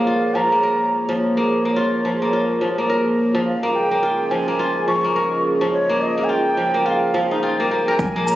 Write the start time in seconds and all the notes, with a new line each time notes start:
Already playing: F3 A#3 F4 G#4 C#5 F5
0.07 F4
0.35 F3 A#5
0.52 A#3
0.63 A#4
1.09 F3
1.37 A#3
1.65 A#3
1.76 F4
2.05 F3
2.22 A#3
2.33 F4
2.61 F3
2.78 A#3
2.90 A#4
3.35 F3
3.45 C#4 F4 G#4 D#5 F5
3.63 A#3
3.75 G5
3.91 A#3
4.03 F4
4.31 F3 G#5
4.48 A#3
4.59 F4
4.88 F3 C#6
5.04 A#3
5.16 A#4
5.61 F3
5.72 C#5
5.89 A#3
6.01 D#5
6.18 A#3
6.24 G#5
6.29 F4 G5
6.57 F3
6.74 A#3
6.86 F4 F5
7.14 F3
7.31 D#4
7.42 F4 G5
7.60 A#3
7.71 A#3
7.88 A#4
7.98 A#1 A#3 F4 G#4 C#5 G#5, kick, shaker
8.16 A#3
8.27 A#5, shaker